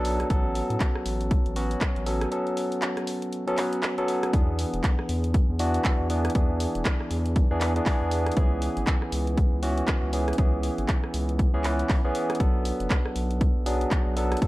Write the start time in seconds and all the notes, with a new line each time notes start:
Already playing: B1 F#3 B3 D4 A4
0.05 open hi-hat
0.20 cross-stick, closed hi-hat
0.30 A1 F#3 B3 C#4 A4, kick, closed hi-hat
0.55 open hi-hat
0.70 A2, closed hi-hat
0.80 kick, clap, closed hi-hat
0.95 cross-stick
1.06 A1, open hi-hat
1.21 closed hi-hat
1.31 kick, closed hi-hat
1.46 A1, closed hi-hat
1.56 F#3 B3 C#4 F#4, open hi-hat
1.71 closed hi-hat
1.81 kick, clap, closed hi-hat
1.96 A1, closed hi-hat
2.06 F#3 B3 C#4 A4, open hi-hat
2.21 cross-stick, closed hi-hat
2.32 F#3 B3 C#4 A4, closed hi-hat
2.47 closed hi-hat
2.57 open hi-hat
2.72 closed hi-hat
2.82 clap, closed hi-hat
2.97 cross-stick, closed hi-hat
3.07 open hi-hat
3.22 closed hi-hat
3.33 closed hi-hat
3.47 F#3 B3 C#4 A4, closed hi-hat
3.58 F#3 B3 C#4 B4, clap, open hi-hat
3.73 closed hi-hat
3.83 clap, open hi-hat
3.98 F#3 B3 C#4 A4, closed hi-hat
4.08 open hi-hat
4.23 cross-stick, closed hi-hat
4.33 E2 E3 D4 G#4, kick, closed hi-hat
4.59 open hi-hat
4.74 E1, closed hi-hat
4.84 kick, clap, closed hi-hat
4.99 cross-stick
5.09 E2, open hi-hat
5.24 closed hi-hat
5.34 kick, closed hi-hat
5.49 E2
5.59 E3 B3 D4 F#4, open hi-hat
5.74 closed hi-hat
5.85 kick, clap, closed hi-hat
6.00 E2
6.10 E3 B3 D4 G#4, open hi-hat
6.25 cross-stick, closed hi-hat
6.30 closed hi-hat
6.35 E2 E3 B3 D4 G#4, kick, closed hi-hat
6.60 open hi-hat
6.75 E1, closed hi-hat
6.85 kick, clap, closed hi-hat
7.00 cross-stick
7.11 E2, open hi-hat
7.26 closed hi-hat
7.36 kick, closed hi-hat
7.51 E2 E3 B3 D4 G#4
7.61 clap, open hi-hat
7.76 E3 B3 D4 G#4, closed hi-hat
7.86 E3 B3 D4 G#4, kick, clap, open hi-hat
8.01 E2
8.11 open hi-hat
8.26 cross-stick, closed hi-hat
8.32 closed hi-hat
8.37 C#2 B3 C#4 G#4, kick, closed hi-hat
8.62 open hi-hat
8.77 G#1, closed hi-hat
8.87 kick, clap, closed hi-hat
9.02 cross-stick
9.12 C#2, open hi-hat
9.27 closed hi-hat
9.37 kick, closed hi-hat
9.52 C#2
9.63 E3 B3 C#4 F#4, open hi-hat
9.78 closed hi-hat
9.88 kick, clap, closed hi-hat
10.03 C#2
10.13 E3 B3 C#4 G#4, open hi-hat
10.28 cross-stick, closed hi-hat
10.33 closed hi-hat
10.38 C#2 E3 B3 C#4 G#4, kick, closed hi-hat
10.63 open hi-hat
10.78 G#1, closed hi-hat
10.89 kick, clap, closed hi-hat
11.04 cross-stick
11.14 C#2, open hi-hat
11.29 closed hi-hat
11.39 kick, closed hi-hat
11.54 C#2 E3 B3 C#4 G#4
11.64 E3 B3 C#4 B4, clap, open hi-hat
11.79 closed hi-hat
11.89 kick, clap, open hi-hat
12.04 B1 E3 B3 C#4 G#4
12.15 open hi-hat
12.30 cross-stick, closed hi-hat
12.35 closed hi-hat
12.40 B1 F#3 B3 D4 A4, kick, closed hi-hat
12.65 open hi-hat
12.80 F#1, closed hi-hat
12.90 kick, clap, closed hi-hat
13.06 cross-stick
13.16 B1, open hi-hat
13.31 closed hi-hat
13.41 kick, closed hi-hat
13.56 B1
13.66 F#3 B3 D4 G#4, open hi-hat
13.81 closed hi-hat
13.91 kick, clap, closed hi-hat
14.06 B1
14.17 F#3 B3 D4 A4, open hi-hat
14.32 cross-stick, closed hi-hat
14.37 closed hi-hat
14.42 B1 F#3 D4 A4, kick, closed hi-hat